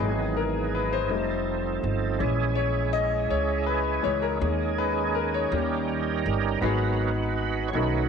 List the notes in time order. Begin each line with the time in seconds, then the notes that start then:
Already playing: G#4
0.00 G#1 E3 F#3 G#3 B3 D#4 G4
0.08 G#4
0.37 A#4
0.75 B4
0.93 C5
1.09 F1 F3 G3 A3 C4 D#4 G#4
1.18 A4
1.84 G1
2.19 A#1 E3 G#3 C#4 E4 G#4
2.56 C#5
2.93 D#5
3.30 C#2 C#5
3.66 B4
4.02 C#2 E3 G#3 C#4 C#5
4.22 A#4
4.40 D#2 G3 G#3 A#3 C#4 D#4 G#4
4.48 G#3
4.78 B4
5.15 A#4
5.34 C#5
5.51 D#2 G3 A#3 C#4 D#4 G4 A#4
6.26 G1
6.61 G#1 G#2 F#3 B3 D#4 F#4 A#4 B4
6.65 G#4
7.68 C#5
7.73 B1 B2 D#3 A3 B3 C#4 D#4 F#4 A4 B4